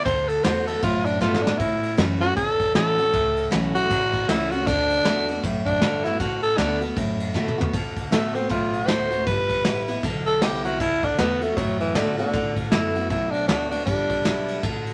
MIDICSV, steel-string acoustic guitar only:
0, 0, Header, 1, 2, 480
1, 0, Start_track
1, 0, Key_signature, 2, "major"
1, 0, Tempo, 383387
1, 74, Time_signature, 4, 2, 24, 8
1, 18700, End_track
2, 0, Start_track
2, 0, Title_t, "Steel-string acoustic guitar"
2, 0, Program_c, 0, 25
2, 75, Note_on_c, 0, 50, 90
2, 534, Note_off_c, 0, 50, 0
2, 549, Note_on_c, 0, 50, 84
2, 561, Note_on_c, 0, 57, 85
2, 566, Note_on_c, 0, 59, 97
2, 572, Note_on_c, 0, 66, 105
2, 1016, Note_off_c, 0, 50, 0
2, 1022, Note_off_c, 0, 57, 0
2, 1024, Note_off_c, 0, 59, 0
2, 1027, Note_off_c, 0, 66, 0
2, 1039, Note_on_c, 0, 45, 99
2, 1510, Note_on_c, 0, 50, 87
2, 1521, Note_on_c, 0, 57, 97
2, 1527, Note_on_c, 0, 59, 87
2, 1534, Note_on_c, 0, 66, 84
2, 1786, Note_off_c, 0, 66, 0
2, 1793, Note_off_c, 0, 50, 0
2, 1798, Note_off_c, 0, 57, 0
2, 1801, Note_off_c, 0, 59, 0
2, 1802, Note_on_c, 0, 66, 64
2, 1825, Note_on_c, 0, 59, 57
2, 1965, Note_off_c, 0, 45, 0
2, 1992, Note_off_c, 0, 66, 0
2, 2001, Note_on_c, 0, 45, 89
2, 2003, Note_off_c, 0, 59, 0
2, 2472, Note_on_c, 0, 52, 101
2, 2482, Note_on_c, 0, 57, 87
2, 2487, Note_on_c, 0, 61, 87
2, 2495, Note_on_c, 0, 66, 86
2, 2754, Note_off_c, 0, 66, 0
2, 2756, Note_off_c, 0, 52, 0
2, 2760, Note_off_c, 0, 57, 0
2, 2763, Note_off_c, 0, 61, 0
2, 2769, Note_on_c, 0, 66, 55
2, 2793, Note_on_c, 0, 61, 46
2, 2927, Note_off_c, 0, 45, 0
2, 2957, Note_off_c, 0, 66, 0
2, 2964, Note_on_c, 0, 40, 100
2, 2969, Note_off_c, 0, 61, 0
2, 3445, Note_on_c, 0, 52, 88
2, 3453, Note_on_c, 0, 57, 82
2, 3460, Note_on_c, 0, 61, 83
2, 3465, Note_on_c, 0, 66, 91
2, 3718, Note_off_c, 0, 66, 0
2, 3723, Note_off_c, 0, 52, 0
2, 3727, Note_off_c, 0, 57, 0
2, 3730, Note_off_c, 0, 61, 0
2, 3733, Note_on_c, 0, 66, 60
2, 3754, Note_on_c, 0, 61, 53
2, 3889, Note_off_c, 0, 40, 0
2, 3920, Note_off_c, 0, 66, 0
2, 3925, Note_on_c, 0, 45, 93
2, 3931, Note_off_c, 0, 61, 0
2, 4390, Note_on_c, 0, 52, 84
2, 4402, Note_on_c, 0, 57, 96
2, 4409, Note_on_c, 0, 61, 95
2, 4418, Note_on_c, 0, 66, 102
2, 4676, Note_off_c, 0, 52, 0
2, 4680, Note_off_c, 0, 66, 0
2, 4682, Note_off_c, 0, 57, 0
2, 4685, Note_off_c, 0, 61, 0
2, 4695, Note_on_c, 0, 66, 65
2, 4716, Note_on_c, 0, 61, 52
2, 4849, Note_off_c, 0, 45, 0
2, 4881, Note_off_c, 0, 66, 0
2, 4892, Note_off_c, 0, 61, 0
2, 4898, Note_on_c, 0, 40, 98
2, 5370, Note_on_c, 0, 52, 94
2, 5378, Note_on_c, 0, 57, 88
2, 5385, Note_on_c, 0, 61, 91
2, 5391, Note_on_c, 0, 66, 104
2, 5643, Note_off_c, 0, 66, 0
2, 5646, Note_off_c, 0, 52, 0
2, 5650, Note_off_c, 0, 57, 0
2, 5653, Note_off_c, 0, 61, 0
2, 5658, Note_on_c, 0, 66, 68
2, 5680, Note_on_c, 0, 61, 57
2, 5815, Note_off_c, 0, 40, 0
2, 5843, Note_off_c, 0, 66, 0
2, 5853, Note_off_c, 0, 61, 0
2, 5862, Note_on_c, 0, 50, 93
2, 6303, Note_off_c, 0, 50, 0
2, 6318, Note_on_c, 0, 50, 86
2, 6329, Note_on_c, 0, 57, 91
2, 6335, Note_on_c, 0, 59, 97
2, 6344, Note_on_c, 0, 66, 102
2, 6599, Note_off_c, 0, 50, 0
2, 6602, Note_off_c, 0, 66, 0
2, 6605, Note_off_c, 0, 57, 0
2, 6608, Note_off_c, 0, 59, 0
2, 6617, Note_on_c, 0, 66, 67
2, 6638, Note_on_c, 0, 59, 52
2, 6802, Note_off_c, 0, 66, 0
2, 6812, Note_off_c, 0, 59, 0
2, 6817, Note_on_c, 0, 45, 102
2, 7287, Note_on_c, 0, 50, 79
2, 7295, Note_on_c, 0, 57, 91
2, 7300, Note_on_c, 0, 59, 89
2, 7309, Note_on_c, 0, 66, 94
2, 7560, Note_off_c, 0, 66, 0
2, 7563, Note_off_c, 0, 50, 0
2, 7567, Note_off_c, 0, 57, 0
2, 7569, Note_off_c, 0, 59, 0
2, 7575, Note_on_c, 0, 66, 66
2, 7595, Note_on_c, 0, 59, 53
2, 7733, Note_off_c, 0, 45, 0
2, 7760, Note_off_c, 0, 66, 0
2, 7767, Note_on_c, 0, 50, 100
2, 7770, Note_off_c, 0, 59, 0
2, 8225, Note_off_c, 0, 50, 0
2, 8240, Note_on_c, 0, 50, 103
2, 8247, Note_on_c, 0, 57, 97
2, 8257, Note_on_c, 0, 59, 104
2, 8264, Note_on_c, 0, 66, 103
2, 8511, Note_off_c, 0, 66, 0
2, 8518, Note_off_c, 0, 50, 0
2, 8522, Note_off_c, 0, 57, 0
2, 8526, Note_on_c, 0, 66, 62
2, 8527, Note_off_c, 0, 59, 0
2, 8550, Note_on_c, 0, 59, 49
2, 8714, Note_off_c, 0, 66, 0
2, 8722, Note_on_c, 0, 45, 94
2, 8726, Note_off_c, 0, 59, 0
2, 9192, Note_on_c, 0, 50, 92
2, 9203, Note_on_c, 0, 57, 90
2, 9211, Note_on_c, 0, 59, 85
2, 9218, Note_on_c, 0, 66, 87
2, 9474, Note_off_c, 0, 50, 0
2, 9476, Note_off_c, 0, 66, 0
2, 9479, Note_off_c, 0, 57, 0
2, 9483, Note_off_c, 0, 59, 0
2, 9491, Note_on_c, 0, 66, 61
2, 9512, Note_on_c, 0, 59, 49
2, 9644, Note_off_c, 0, 45, 0
2, 9676, Note_off_c, 0, 66, 0
2, 9686, Note_off_c, 0, 59, 0
2, 9692, Note_on_c, 0, 50, 91
2, 10148, Note_off_c, 0, 50, 0
2, 10163, Note_on_c, 0, 50, 86
2, 10171, Note_on_c, 0, 57, 99
2, 10179, Note_on_c, 0, 59, 85
2, 10185, Note_on_c, 0, 66, 97
2, 10433, Note_off_c, 0, 66, 0
2, 10438, Note_off_c, 0, 50, 0
2, 10442, Note_off_c, 0, 57, 0
2, 10446, Note_off_c, 0, 59, 0
2, 10448, Note_on_c, 0, 66, 57
2, 10467, Note_on_c, 0, 59, 50
2, 10634, Note_off_c, 0, 66, 0
2, 10635, Note_on_c, 0, 45, 96
2, 10643, Note_off_c, 0, 59, 0
2, 11113, Note_on_c, 0, 50, 89
2, 11123, Note_on_c, 0, 57, 93
2, 11129, Note_on_c, 0, 59, 89
2, 11135, Note_on_c, 0, 66, 88
2, 11386, Note_off_c, 0, 66, 0
2, 11393, Note_off_c, 0, 50, 0
2, 11398, Note_off_c, 0, 57, 0
2, 11401, Note_off_c, 0, 59, 0
2, 11401, Note_on_c, 0, 66, 61
2, 11425, Note_on_c, 0, 59, 54
2, 11559, Note_off_c, 0, 45, 0
2, 11590, Note_off_c, 0, 66, 0
2, 11602, Note_off_c, 0, 59, 0
2, 11606, Note_on_c, 0, 55, 92
2, 12062, Note_off_c, 0, 55, 0
2, 12077, Note_on_c, 0, 55, 95
2, 12092, Note_on_c, 0, 59, 96
2, 12101, Note_on_c, 0, 64, 97
2, 12354, Note_off_c, 0, 55, 0
2, 12354, Note_off_c, 0, 64, 0
2, 12362, Note_off_c, 0, 59, 0
2, 12369, Note_on_c, 0, 64, 60
2, 12392, Note_on_c, 0, 59, 54
2, 12553, Note_off_c, 0, 64, 0
2, 12565, Note_off_c, 0, 59, 0
2, 12573, Note_on_c, 0, 50, 99
2, 13042, Note_on_c, 0, 55, 82
2, 13054, Note_on_c, 0, 59, 84
2, 13065, Note_on_c, 0, 64, 95
2, 13316, Note_off_c, 0, 64, 0
2, 13317, Note_off_c, 0, 55, 0
2, 13323, Note_off_c, 0, 59, 0
2, 13331, Note_on_c, 0, 64, 61
2, 13351, Note_on_c, 0, 59, 48
2, 13488, Note_off_c, 0, 50, 0
2, 13514, Note_off_c, 0, 64, 0
2, 13524, Note_off_c, 0, 59, 0
2, 13525, Note_on_c, 0, 50, 93
2, 13988, Note_off_c, 0, 50, 0
2, 14003, Note_on_c, 0, 50, 92
2, 14013, Note_on_c, 0, 57, 91
2, 14019, Note_on_c, 0, 59, 99
2, 14026, Note_on_c, 0, 66, 104
2, 14275, Note_off_c, 0, 66, 0
2, 14277, Note_off_c, 0, 50, 0
2, 14282, Note_off_c, 0, 57, 0
2, 14285, Note_off_c, 0, 59, 0
2, 14290, Note_on_c, 0, 66, 58
2, 14315, Note_on_c, 0, 59, 47
2, 14474, Note_off_c, 0, 66, 0
2, 14487, Note_off_c, 0, 59, 0
2, 14494, Note_on_c, 0, 45, 99
2, 14964, Note_on_c, 0, 50, 89
2, 14975, Note_on_c, 0, 57, 96
2, 14979, Note_on_c, 0, 59, 89
2, 14985, Note_on_c, 0, 66, 104
2, 15235, Note_off_c, 0, 66, 0
2, 15238, Note_off_c, 0, 50, 0
2, 15243, Note_off_c, 0, 57, 0
2, 15246, Note_off_c, 0, 59, 0
2, 15250, Note_on_c, 0, 66, 65
2, 15273, Note_on_c, 0, 59, 48
2, 15409, Note_off_c, 0, 45, 0
2, 15434, Note_off_c, 0, 66, 0
2, 15445, Note_off_c, 0, 59, 0
2, 15447, Note_on_c, 0, 50, 87
2, 15912, Note_off_c, 0, 50, 0
2, 15927, Note_on_c, 0, 50, 95
2, 15932, Note_on_c, 0, 57, 92
2, 15940, Note_on_c, 0, 59, 95
2, 15946, Note_on_c, 0, 66, 91
2, 16198, Note_off_c, 0, 66, 0
2, 16199, Note_off_c, 0, 50, 0
2, 16202, Note_off_c, 0, 57, 0
2, 16206, Note_off_c, 0, 59, 0
2, 16213, Note_on_c, 0, 66, 58
2, 16239, Note_on_c, 0, 59, 50
2, 16395, Note_off_c, 0, 66, 0
2, 16407, Note_on_c, 0, 45, 96
2, 16408, Note_off_c, 0, 59, 0
2, 16880, Note_on_c, 0, 50, 88
2, 16887, Note_on_c, 0, 57, 82
2, 16894, Note_on_c, 0, 59, 83
2, 16902, Note_on_c, 0, 66, 96
2, 17153, Note_off_c, 0, 66, 0
2, 17156, Note_off_c, 0, 50, 0
2, 17159, Note_off_c, 0, 57, 0
2, 17163, Note_off_c, 0, 59, 0
2, 17168, Note_on_c, 0, 66, 62
2, 17191, Note_on_c, 0, 59, 47
2, 17325, Note_off_c, 0, 45, 0
2, 17352, Note_off_c, 0, 66, 0
2, 17362, Note_on_c, 0, 55, 89
2, 17364, Note_off_c, 0, 59, 0
2, 17824, Note_off_c, 0, 55, 0
2, 17839, Note_on_c, 0, 55, 85
2, 17851, Note_on_c, 0, 59, 93
2, 17864, Note_on_c, 0, 64, 89
2, 18299, Note_off_c, 0, 55, 0
2, 18305, Note_off_c, 0, 59, 0
2, 18312, Note_off_c, 0, 64, 0
2, 18324, Note_on_c, 0, 50, 98
2, 18700, Note_off_c, 0, 50, 0
2, 18700, End_track
0, 0, End_of_file